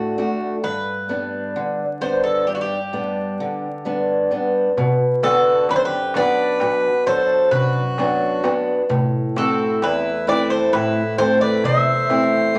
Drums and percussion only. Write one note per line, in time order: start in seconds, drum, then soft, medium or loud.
4.77 darbuka dum loud
5.23 darbuka tek medium
5.69 darbuka tek medium
6.14 darbuka tek medium
6.38 darbuka tek soft
6.60 darbuka tek medium
6.83 darbuka tek soft
7.52 darbuka dum medium
7.75 darbuka tek soft
7.98 darbuka tek medium
8.21 darbuka tek soft
8.44 darbuka tek medium
8.90 darbuka dum loud
9.37 darbuka tek medium
9.82 darbuka tek medium
10.28 darbuka tek medium
10.51 darbuka tek soft
10.74 darbuka tek medium
10.96 darbuka tek soft
11.19 darbuka tek medium
11.64 darbuka dum medium
11.87 darbuka tek soft
12.10 darbuka tek medium
12.33 darbuka tek soft
12.56 darbuka tek medium